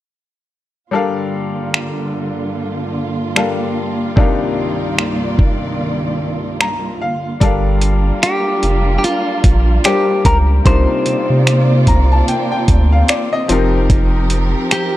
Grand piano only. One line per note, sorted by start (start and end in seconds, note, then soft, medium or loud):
0.91 3.31 G3 medium
0.91 3.32 D4 medium
0.91 3.32 A4 medium
0.91 3.33 A#4 medium
0.91 3.33 F5 medium
3.36 4.15 G3 medium
3.36 4.16 D4 soft
3.36 4.17 A4 soft
3.36 4.17 A#4 soft
3.36 4.18 F5 medium
4.16 6.96 C3 medium
4.16 6.97 G3 medium
4.16 6.97 D4 medium
4.16 6.97 D#4 medium
4.16 6.98 A#4 medium
4.16 6.98 F5 medium
6.61 6.98 A#5 medium
7.02 7.39 F5 medium
7.40 9.80 G3 medium
7.40 9.81 D4 medium
7.40 9.81 A4 medium
7.40 9.81 A#4 medium
7.40 9.82 F5 medium
9.84 10.64 G3 soft
9.84 10.65 D4 soft
9.84 10.66 G4 soft
9.84 10.66 A#4 soft
9.84 10.66 C5 medium
10.64 13.45 C3 medium
10.64 13.45 G3 medium
10.64 13.46 D4 medium
10.64 13.46 D#4 medium
10.64 13.46 F4 medium
10.64 13.47 A#4 medium
11.88 12.09 A#5 medium
12.12 12.27 A5 medium
12.29 12.50 G5 medium
12.52 12.89 G5 medium
12.92 13.08 F5 medium
13.09 13.31 D5 medium
13.33 13.86 D#5 medium
13.48 14.97 F3 medium
13.48 14.97 C4 medium
13.48 14.97 D#4 medium
13.48 14.97 G4 medium
13.48 14.97 A#4 medium